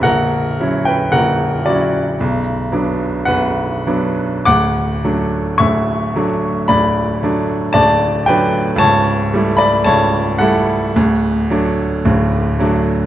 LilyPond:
<<
  \new Staff \with { instrumentName = "Grand piano" } { \time 4/4 \key d \major \tempo 4 = 56 <ais' fis''>8. <b' g''>16 <ais' fis''>8 <fis' d''>4 r8 <b' fis''>4 | <fis'' d'''>4 <e'' cis'''>4 <d'' b''>4 <d'' a''>8 <b' g''>8 | <cis'' a''>8. <d'' b''>16 <cis'' a''>8 <a' fis''>4 r4. | }
  \new Staff \with { instrumentName = "Grand piano" } { \clef bass \time 4/4 \key d \major <ais,,, ais,,>8 <fis cis' e'>8 <ais,,, ais,,>8 <fis cis' e'>8 <b,,, b,,>8 <fis b d'>8 <b,,, b,,>8 <fis b d'>8 | <d,, d,>8 <fis a d'>8 <d,, d,>8 <fis a d'>8 <d,, d,>8 <fis a d'>8 <d,, d,>8 <fis a d'>8 | <cis,, cis,>8 <g a e'>8 <cis,, cis,>8 <g a e'>8 <d,, d,>8 <fis a d'>8 <d,, d,>8 <fis a d'>8 | }
>>